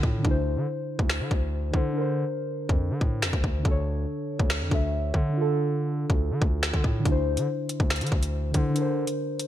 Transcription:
0.00 0.24 A2 loud
0.00 0.17 D3 medium
0.00 0.20 D4 medium
0.00 0.22 F4 medium
0.00 0.24 A4 medium
0.00 kick medium
0.19 1.68 D3 medium
0.19 1.70 D4 medium
0.25 0.58 D2 loud
0.25 1.72 E4 medium
0.25 kick loud
0.31 1.74 C5 medium
0.56 0.67 D3 medium
0.99 1.22 D2 loud
0.99 kick loud
1.10 finger snap loud
1.10 snare loud
1.20 1.30 D3 loud
1.31 1.72 D2 loud
1.31 kick loud
1.71 1.88 D3 medium
1.71 2.25 D3 loud
1.71 1.92 D4 soft
1.71 1.95 E4 soft
1.71 kick medium
1.76 1.96 C5 medium
1.89 3.58 D3 medium
1.89 3.61 D4 medium
1.97 3.63 A#4 medium
1.97 3.65 C5 medium
2.69 2.92 F2 loud
2.69 kick medium
2.91 3.01 D3 loud
3.01 3.24 A2 loud
3.01 kick loud
3.22 3.33 F2 loud
3.22 finger snap loud
3.22 snare loud
3.33 3.43 D2 loud
3.33 kick loud
3.44 3.64 D2 loud
3.44 kick medium
3.59 4.66 D3 medium
3.59 4.68 D4 medium
3.65 4.06 D2 loud
3.65 4.70 A4 medium
3.65 kick loud
3.71 4.72 C#5 medium
4.39 4.62 D2 loud
4.39 kick loud
4.50 finger snap loud
4.50 snare loud
4.61 4.71 F2 loud
4.68 5.12 D2 loud
4.68 5.28 D3 medium
4.68 5.32 D4 soft
4.68 5.36 A4 soft
4.68 kick loud
4.74 5.37 E5 medium
5.14 6.06 D3 loud
5.14 kick medium
5.29 6.98 D3 medium
5.33 7.01 D4 medium
5.33 7.03 F4 medium
5.41 7.05 A4 medium
6.10 6.32 D2 loud
6.10 kick medium
6.31 6.41 D3 loud
6.42 6.72 D2 loud
6.42 kick loud
6.63 finger snap loud
6.63 snare loud
6.73 6.84 D3 loud
6.73 kick loud
6.84 7.05 A2 loud
6.84 kick medium
7.00 8.48 D3 medium
7.00 8.50 D4 medium
7.05 7.39 D2 loud
7.05 8.52 E4 medium
7.05 kick loud
7.05 closed hi-hat medium
7.11 8.54 C5 medium
7.37 7.47 D3 loud
7.37 closed hi-hat medium
7.69 closed hi-hat medium
7.80 8.03 D2 loud
7.80 kick loud
7.90 finger snap medium
7.90 snare loud
7.90 closed hi-hat medium
7.96 closed hi-hat medium
8.01 8.11 D3 loud
8.01 closed hi-hat medium
8.07 closed hi-hat medium
8.12 8.53 D2 loud
8.12 kick loud
8.23 closed hi-hat medium
8.51 8.69 D3 medium
8.51 9.05 D3 loud
8.51 8.73 D4 soft
8.51 8.76 E4 soft
8.51 kick medium
8.51 closed hi-hat medium
8.57 8.77 C5 medium
8.70 9.47 D3 medium
8.70 9.47 D4 medium
8.76 9.47 A#4 medium
8.76 closed hi-hat medium
8.82 9.47 C5 medium
9.07 closed hi-hat medium
9.39 closed hi-hat medium

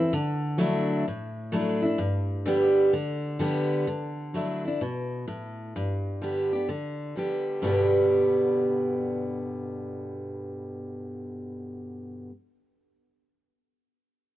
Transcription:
0.00 0.13 C4 soft
0.00 0.12 E4 medium
0.13 1.03 D3 loud
0.58 1.04 F#3 loud
0.58 1.04 A3 loud
0.58 1.05 D4 loud
0.58 1.05 E4 loud
1.08 1.97 A2 medium
1.52 1.82 F#3 loud
1.52 1.82 A3 medium
1.52 1.83 D4 medium
1.52 1.81 E4 loud
1.82 2.00 D4 medium
1.82 1.98 E4 medium
1.98 2.89 G2 medium
2.46 2.91 D3 loud
2.46 2.92 G3 loud
2.46 2.92 B3 loud
2.46 2.93 G4 loud
2.93 3.38 D3 medium
3.39 3.85 D3 loud
3.39 3.86 G3 medium
3.39 3.86 B3 loud
3.39 3.86 G4 medium
3.87 4.78 D3 medium
4.34 4.64 F#3 medium
4.34 4.64 A3 medium
4.34 4.64 D4 medium
4.34 4.64 E4 medium
4.65 4.82 D4 soft
4.65 4.80 E4 medium
4.81 5.26 B2 medium
5.28 5.73 A2 medium
5.76 6.66 G2 medium
6.22 6.51 D3 medium
6.22 6.51 G3 medium
6.22 6.52 B3 medium
6.22 6.52 G4 medium
6.53 6.69 B3 soft
6.53 6.68 G4 medium
6.69 7.14 D3 medium
7.16 7.61 D3 soft
7.16 7.61 G3 medium
7.16 7.62 B3 medium
7.16 7.62 G4 medium
7.62 12.29 G2 medium
7.62 12.29 B2 medium
7.62 12.30 D3 medium
7.62 12.31 G3 medium
7.62 12.32 B3 medium
7.62 12.32 G4 medium

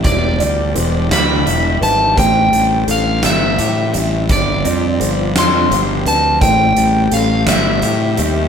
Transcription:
0.00 0.76 E3 medium
0.00 0.40 G3 medium
0.00 1.14 E4 medium
0.00 0.40 E5 medium
0.00 6.38 G5 medium
0.04 0.39 E1 medium
0.04 1.83 E2 medium
0.04 2.16 E3 medium
0.04 4.26 D4 medium
0.04 1.15 D5 medium
0.04 2.16 D5 medium
0.04 kick medium
0.04 closed hi-hat medium
0.39 0.75 D2 medium
0.39 1.81 G3 medium
0.39 0.75 D5 medium
0.39 closed hi-hat medium
0.75 1.10 E1 medium
0.75 2.18 E3 medium
0.75 1.46 C5 medium
0.75 closed hi-hat medium
1.10 1.45 D2 medium
1.10 2.18 D4 medium
1.10 1.79 B5 medium
1.10 snare medium
1.10 closed hi-hat medium
1.46 1.81 E1 medium
1.46 2.17 E4 medium
1.46 closed hi-hat medium
1.81 2.16 G#1 medium
1.81 2.20 G3 medium
1.81 2.17 B4 medium
1.81 2.19 A5 medium
1.81 closed hi-hat medium
2.17 2.52 A1 medium
2.17 3.94 A2 medium
2.17 4.28 A3 medium
2.17 8.48 C4 medium
2.17 2.88 C5 medium
2.17 2.85 G5 medium
2.17 kick medium
2.17 closed hi-hat medium
2.52 2.87 A1 medium
2.52 3.94 G3 medium
2.52 closed hi-hat medium
2.87 3.22 A1 medium
2.87 4.30 E3 medium
2.87 3.59 A4 medium
2.87 3.25 F5 medium
2.87 closed hi-hat medium
3.23 3.58 G1 medium
3.23 4.64 C4 medium
3.23 4.27 E5 medium
3.23 snare medium
3.23 closed hi-hat medium
3.59 3.93 A2 medium
3.59 5.03 G4 medium
3.59 closed hi-hat medium
3.94 4.29 A1 medium
3.94 4.64 G3 medium
3.94 4.65 E5 medium
3.94 closed hi-hat medium
4.29 4.64 G1 medium
4.29 6.06 G2 medium
4.29 6.40 G3 medium
4.29 6.40 F4 medium
4.29 5.33 D5 medium
4.29 kick medium
4.29 closed hi-hat medium
4.64 5.00 F2 medium
4.64 6.06 C4 medium
4.64 5.00 D5 medium
4.64 closed hi-hat medium
5.00 5.35 G1 medium
5.00 6.42 F3 medium
5.00 5.71 C5 medium
5.00 closed hi-hat medium
5.35 5.70 F2 medium
5.35 6.42 D4 medium
5.35 6.04 C6 medium
5.35 snare loud
5.35 closed hi-hat medium
5.71 6.05 G1 medium
5.71 6.45 G4 medium
5.71 closed hi-hat medium
6.06 6.40 D2 medium
6.06 6.42 C4 medium
6.06 6.42 B4 medium
6.06 6.40 A5 medium
6.06 closed hi-hat medium
6.41 6.76 A1 medium
6.41 8.18 A2 medium
6.41 8.48 A3 medium
6.41 8.48 G4 medium
6.41 7.12 C5 medium
6.41 8.48 G5 medium
6.41 7.15 G5 medium
6.41 kick loud
6.41 closed hi-hat medium
6.77 7.11 A1 medium
6.77 8.18 G3 medium
6.77 closed hi-hat medium
7.11 7.46 A1 medium
7.11 7.82 A4 medium
7.11 7.49 F5 medium
7.11 closed hi-hat medium
7.47 7.82 G1 medium
7.47 8.48 C4 medium
7.47 8.48 E5 medium
7.47 snare medium
7.47 closed hi-hat medium
7.82 8.17 A2 medium
7.82 8.48 G4 medium
7.82 closed hi-hat medium
8.17 8.48 D#2 medium
8.17 8.48 G3 medium
8.17 8.48 E5 medium
8.17 closed hi-hat medium

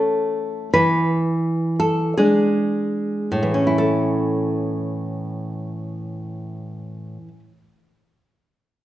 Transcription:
0.00 0.70 A3 soft
0.00 0.70 C#4 soft
0.00 0.70 A4 medium
0.74 2.13 E3 soft
0.74 1.75 B4 medium
1.80 2.17 A4 medium
2.17 3.54 G#3 soft
2.17 3.76 D4 soft
2.17 3.75 G#4 medium
3.32 7.17 A2 medium
3.43 7.28 E3 soft
3.54 7.39 C#4 soft
3.67 7.52 E4 soft
3.78 7.63 A4 medium

